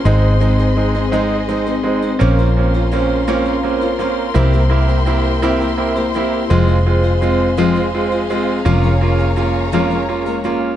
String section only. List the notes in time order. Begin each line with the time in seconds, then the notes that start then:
Already playing: C6
0.06 G#4 C5 D#5
2.21 C#4 A#4 F5 C6
4.37 E5 G5
6.53 G#4 C5 F5
8.66 C#5 A#5